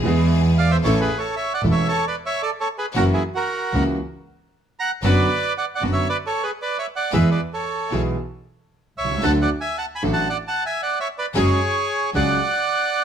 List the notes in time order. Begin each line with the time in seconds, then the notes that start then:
Already playing: G#4
0.04 E2 E3 G#3 B3 E4 G#4
0.08 G#4
0.58 D5 F5
0.71 C5 E5
0.84 A1 A2 E3 A3 C#4 E4 A4 C#5
1.01 G#4 B4
1.18 A4 C#5
1.36 C#5 E5
1.54 D5 F#5
1.62 E1 E2 E3 A3 C#4 E4 A4
1.72 C#5 E5
1.88 A4 C#5
2.07 B4 D5
2.26 C#5 E5
2.42 A4 D5
2.60 A4 C#5
2.78 G#4 B4
2.94 F#1 F#2 E3 F#3 A#3 C#4 E4 F#4 A#4
3.13 E4 G#4
3.35 F#4 A#4
3.72 C#2 C#3 E3 A#3 C#4 E4 F#4
4.79 F#5 A#5
5.03 F#1 F#2 D3 F#3 B3 D4 F#4 B4 D5
5.58 D5 F#5
5.75 D5 F#5
5.81 F#1 F#2 D3 F#3 B3 D4 F#4
5.93 C#5 E5
6.09 B4 D5
6.27 A4 C#5
6.43 G#4 B4
6.62 B4 D5
6.79 C#5 E5
6.96 D5 F#5
7.12 E2 E3 G#3 B3 E4 G#4 B4 E5
7.31 B4 D5
7.54 A4 C#5
7.91 B1 B2 E3 G#3 B3 E4 G#4
8.97 C2 C#5 E5
9.04 B1
9.11 C2
9.18 C#2
9.23 D2 D3 F#3 A3 D4 F#4 A4 F#5 A5
9.42 D5 F#5
9.61 E5 G#5
9.78 F#5 A5
9.95 G#5 B5
10.02 A1 A2 F#3 A3 D4 F#4 A4
10.13 F#5 A5
10.29 D5 F#5
10.48 F#5 A5
10.66 E5 G#5
10.82 D5 F#5
11.00 C#5 E5
11.18 B4 D5
11.35 F#1 F#2 F#3 G#3 C#4 F#4 G#4 C#5
12.13 C#2 C#3 F#3 G#3 C#4 F#4 G#4 D5 F#5